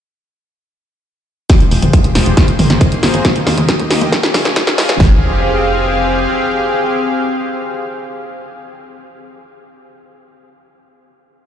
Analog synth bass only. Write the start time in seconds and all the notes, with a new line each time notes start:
1.72 F1
1.82 F1
2.04 F1
2.15 F1
2.26 F1
2.59 G#1
2.70 G#1
3.03 G#1
3.14 G#1
3.47 D#2
3.58 D#2
3.80 D#2
3.90 D#2
4.01 D#2
4.34 C#2
4.45 C#2
4.78 C#2
4.89 C#2
5.00 F1